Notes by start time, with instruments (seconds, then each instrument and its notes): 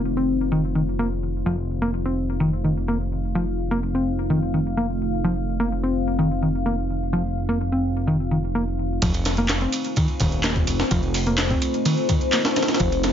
Already playing: analog synth bass F1, ambient pad A3 C4 D#4 F4 C5
0.17 picked electric bass C4
0.52 picked electric bass D#3
0.75 picked electric bass D#3
0.99 picked electric bass A#3
1.46 analog synth bass F1, picked electric bass F3, ambient pad F5
1.82 picked electric bass A#3
2.05 picked electric bass C4
2.40 picked electric bass D#3
2.64 picked electric bass D#3
2.88 picked electric bass A#3
3.35 picked electric bass F3
3.71 picked electric bass A#3
3.95 picked electric bass C4
4.30 picked electric bass D#3
4.54 picked electric bass D#3
4.77 picked electric bass A#3
5.24 picked electric bass F3
5.60 picked electric bass A#3
5.83 picked electric bass C4
6.19 picked electric bass D#3
6.42 picked electric bass D#3
6.66 picked electric bass A#3
7.13 picked electric bass F3
7.49 picked electric bass A#3
7.72 picked electric bass C4
8.07 picked electric bass D#3
8.31 picked electric bass D#3
8.55 picked electric bass A#3
9.02 analog synth bass F1, picked electric bass F3, ambient pad A3 C4 D#4 F4 C5, kick, closed hi-hat, ride
9.14 closed hi-hat, ride
9.25 snare, closed hi-hat, ride
9.37 picked electric bass A#3, closed hi-hat
9.49 snare, clap, closed hi-hat, ride
9.61 picked electric bass C4, closed hi-hat
9.72 closed hi-hat, ride
9.85 closed hi-hat
9.96 picked electric bass D#3, kick, closed hi-hat, ride
10.08 closed hi-hat
10.20 analog synth bass D#1, picked electric bass D#3, kick, closed hi-hat, ride
10.32 closed hi-hat
10.44 picked electric bass A#3, snare, clap, closed hi-hat, ride
10.56 kick, closed hi-hat
10.67 analog synth bass F1, closed hi-hat, ride
10.80 snare, closed hi-hat
10.91 analog synth bass F1, picked electric bass F3, kick, closed hi-hat, ride
11.03 closed hi-hat
11.14 closed hi-hat, open hi-hat
11.26 picked electric bass A#3, closed hi-hat
11.38 snare, clap, closed hi-hat, ride
11.50 picked electric bass C4, kick, closed hi-hat
11.62 closed hi-hat, ride
11.74 closed hi-hat
11.85 picked electric bass D#3, closed hi-hat, ride
11.97 closed hi-hat
12.09 picked electric bass D#3, kick, closed hi-hat, ride
12.21 closed hi-hat
12.33 picked electric bass A#3, clap, closed hi-hat, ride
12.45 snare, closed hi-hat
12.56 snare, closed hi-hat, ride
12.62 snare, ride
12.68 snare, closed hi-hat, ride
12.74 snare, ride
12.80 analog synth bass F1, picked electric bass F3, kick, closed hi-hat, ride
12.92 closed hi-hat, ride
13.03 snare, closed hi-hat, ride